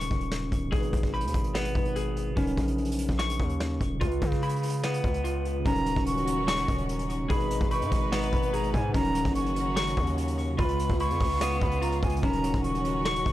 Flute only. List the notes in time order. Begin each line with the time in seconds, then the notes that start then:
5.66 A#5
6.07 C#6
7.30 B5
7.71 C#6
8.33 B5
8.53 A#5
8.74 G#5
8.94 A#5
9.35 C#6
10.59 B5
11.00 C#6
11.62 B5
11.82 A#5
12.03 G#5
12.23 A#5
12.64 C#6